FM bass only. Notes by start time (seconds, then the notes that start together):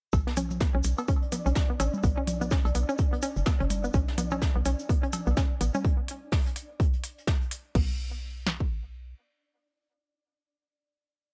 0.13 B1
0.75 B1
0.85 B1
1.46 B1
1.80 A1
2.04 B1
2.65 B1
2.75 B1
3.37 F#1
3.60 F#1
3.94 B1
4.56 B1
4.66 B1
5.27 B1
5.61 A1
7.75 B1